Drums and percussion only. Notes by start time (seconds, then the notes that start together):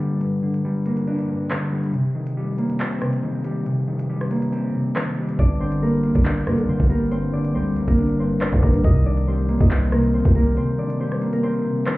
0.21 closed hi-hat
0.54 closed hi-hat
0.86 closed hi-hat
0.97 closed hi-hat
1.07 closed hi-hat
1.19 closed hi-hat
1.51 cross-stick, clap
1.84 closed hi-hat
1.94 closed hi-hat
2.27 closed hi-hat
2.58 closed hi-hat
2.70 closed hi-hat
2.80 clap
3.02 cross-stick, closed hi-hat
3.13 closed hi-hat
3.45 closed hi-hat
3.66 closed hi-hat
3.99 closed hi-hat
4.21 cross-stick
4.31 closed hi-hat
4.42 closed hi-hat
4.53 closed hi-hat
4.96 cross-stick, clap
5.29 closed hi-hat
5.39 kick, closed hi-hat
5.72 closed hi-hat
6.04 closed hi-hat
6.15 kick, closed hi-hat
6.25 clap
6.47 cross-stick, closed hi-hat
6.58 closed hi-hat
6.80 kick
6.90 closed hi-hat
7.12 closed hi-hat
7.45 closed hi-hat
7.76 closed hi-hat
7.88 kick, closed hi-hat
7.98 closed hi-hat
8.09 closed hi-hat
8.41 cross-stick, clap
8.53 kick
8.63 kick
8.74 closed hi-hat
8.84 kick, closed hi-hat
9.17 closed hi-hat
9.49 closed hi-hat
9.60 kick, closed hi-hat
9.71 clap
9.92 cross-stick, closed hi-hat
10.04 closed hi-hat
10.25 kick
10.35 closed hi-hat
10.57 closed hi-hat
10.90 closed hi-hat
11.12 cross-stick
11.22 closed hi-hat
11.33 closed hi-hat
11.44 closed hi-hat
11.86 cross-stick, clap